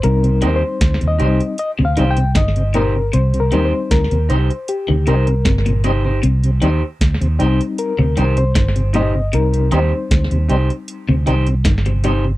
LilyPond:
<<
  \new Staff \with { instrumentName = "Reed electric piano" } { \time 4/4 \key c \minor \tempo 4 = 77 << { \tuplet 3/2 { bes'4 c''8~ c''8 ees''4 ees''8 f''8 g''8 } ees''8 bes'8 | \tuplet 3/2 { c''8 bes'8 c''8 } bes'8 c''8 g'8 bes'4 r8 | r2 bes'8. c''8. ees''8 | bes'8 c''4 r2 r8 | } \\ { <g c' ees'>4. <g c' ees'>8 r2 | r8 <g c' ees'>8 r2. | r4. <g c' ees'>8 r2 | <g c' ees'>1 | } >> }
  \new Staff \with { instrumentName = "Clean electric guitar" } { \time 4/4 \key c \minor r8 <ees' g' c''>16 r8. <ees' g' c''>16 r8. <ees' g' c''>16 r8. <ees' g' c''>16 r16 | r8 <ees' g' c''>16 r8. <ees' g' c''>16 r8. <ees' g' c''>16 r8. <ees' g' c''>16 <ees' g' c''>16 | r8 <ees' g' c''>16 r8. <ees' g' c''>16 r8. <ees' g' c''>16 r8. <ees' g' c''>16 r16 | r8 <ees' g' c''>16 r8. <ees' g' c''>16 r8. <ees' g' c''>16 r8. <ees' g' c''>16 r16 | }
  \new Staff \with { instrumentName = "Tonewheel organ" } { \time 4/4 \key c \minor r8 <g c' ees'>8 r8 <g c' ees'>8 r8 <g c' ees'>8 r8 <g c' ees'>8 | r8 <g c' ees'>8 r8 <g c' ees'>8 r8 <g c' ees'>8 r8 <g c' ees'>8 | r8 <g c' ees'>8 r8 <g c' ees'>8 r8 <g c' ees'>8 r8 <g c' ees'>8 | r8 <g c' ees'>8 r8 <g c' ees'>8 r8 <g c' ees'>8 r8 <g c' ees'>8 | }
  \new Staff \with { instrumentName = "Tonewheel organ" } { \clef bass \time 4/4 \key c \minor r16 c16 r8. c16 r8. c16 r16 c16 r16 c16 r16 c16 | r16 c16 r8. c16 r8. c16 r16 c16 r16 c16 r16 c16 | r16 c16 r8. c16 r8. c16 r16 c16 r16 c16 r16 c16 | r16 c16 r8. c16 r8. c16 r16 c16 r16 c16 r16 c16 | }
  \new Staff \with { instrumentName = "Clean electric guitar" } { \clef bass \time 4/4 \key c \minor c16 r16 ees16 r4. c16 ees16 r16 ees16 r16 bes,16 r16 | c16 r16 ees16 r4. ees16 c16 r16 c16 bes,16 c16 r16 | c16 r16 ees16 r4. c16 ees16 r16 ees16 r16 bes,16 r16 | c16 r16 ees16 r4. c16 ees16 r16 ees16 c16 c16 r16 | }
  \new Staff \with { instrumentName = "Fingered electric bass" } { \clef bass \time 4/4 \key c \minor c,8 ees,16 r16 d,16 ees,16 c,16 r8 d,16 c,8 g,,4 | c,8 ees,16 r16 d,16 ees,16 c,16 r8 d,16 c,8 g,,4 | c,8 ees,16 r16 d,16 ees,16 c,16 r8 d,16 c,8 g,,4 | c,8 ees,16 r16 d,16 ees,16 c,16 r8 d,16 c,8 g,,4 | }
  \new DrumStaff \with { instrumentName = "Drums" } \drummode { \time 4/4 hh16 hh16 hh8 <hh bd sn>16 hh16 hh16 hh16 hh8 hh16 hh16 <hh bd sn>16 hh16 hh8 | hh16 hh16 hh8 <hh bd sn>16 hh16 hh16 hh16 hh8 hh16 hh16 <hh bd sn>16 hh16 hh8 | hh16 hh16 hh8 <hh bd sn>16 hh16 hh16 hh16 hh8 hh16 hh16 <hh bd sn>16 hh16 hh8 | hh16 hh16 hh8 <hh bd sn>16 hh16 hh16 hh16 hh8 hh16 hh16 <hh bd sn>16 hh16 hh8 | }
>>